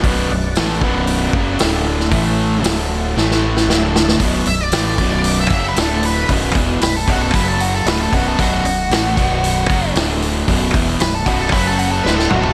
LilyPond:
<<
  \new Staff \with { instrumentName = "Lead electric guitar" } { \time 4/4 \key b \minor \tempo 4 = 115 r1 | r1 | r8 e''16 d''4. e''8 b'16 a'8 b'8 | r4 b'16 a'16 fis'16 a'16 b'16 a'16 fis'16 a'16 b'16 a'16 fis'16 a'16 |
fis'2. r4 | r4 b'16 a'16 fis'16 a'16 b'16 a'16 fis'16 a'16 b'16 a'16 fis'16 a'16 | }
  \new Staff \with { instrumentName = "Tonewheel organ" } { \time 4/4 \key b \minor <b d' fis' d''>2. <a d' a'>4 | <a e' a'>4 <a d' a'>4 <a e' a'>4 <a d' a'>4 | r1 | r1 |
r1 | r1 | }
  \new Staff \with { instrumentName = "Overdriven electric guitar" } { \clef bass \time 4/4 \key b \minor <b,, fis, b,>8 <b,, fis,>8 <a, e a>8 <b,, fis, b,>4 <fis, cis fis>8 <d, a, d>4 | <a, e a>4 <d, a, d>4 <a, e a>4 <d, a, d>4 | <b,, fis, b,>8 <b,, fis,>8 <a, e a>8 <b,, fis, b,>4 <fis, cis fis>8 <d, a, d>4 | <b,, fis, b,>8 <e, b, e>8 <b,, fis,>8 <b,, fis, b,>8 <fis, cis fis>4 <d, a, d>8 <b,, fis, b,>8 |
<b,, fis, b,>8 <b,, fis,>8 <a, e a>8 <b,, fis, b,>4 <fis, cis fis>8 <d, a, d>4 | <b,, fis, b,>8 <e, b, e>8 <b,, fis,>8 <b,, fis, b,>8 <fis, cis fis>4 <d, a, d>8 <b,, fis, b,>8 | }
  \new Staff \with { instrumentName = "Fingered electric bass" } { \clef bass \time 4/4 \key b \minor b,,,8 b,,,8 a,,8 b,,,4 fis,,8 d,,4 | a,,4 d,,4 a,,4 d,,4 | b,,,8 b,,,8 a,,8 b,,,4 fis,,8 d,,4 | b,,,8 e,,8 b,,,8 b,,,8 fis,,4 d,,8 b,,,8 |
b,,,8 b,,,8 a,,8 b,,,4 fis,,8 d,,4 | b,,,8 e,,8 b,,,8 b,,,8 fis,,4 d,,8 b,,,8 | }
  \new DrumStaff \with { instrumentName = "Drums" } \drummode { \time 4/4 <hho bd>4 <hho sn>8 bd8 hho8 bd8 <hho sn>8. sn16 | <hho bd>4 <hho sn>4 sn16 sn8 sn16 sn8 sn16 sn16 | <hho bd>8 hho8 <hho sn>8 <hho bd>8 hho8 <hho bd>8 <hho sn>8 hho8 | <hho bd>8 <hho bd>8 <hho sn>8 <hho bd>8 <hho bd>8 hho8 <hho sn>8 <hho bd>8 |
<hho bd>8 hho8 <hho sn>8 <hho bd>8 hho8 <hho bd>8 <hho sn>8 hho8 | <hho bd>8 <hho bd>8 <hho sn>8 <hho bd>8 <hho bd>8 hho8 sn16 sn16 toml16 tomfh16 | }
>>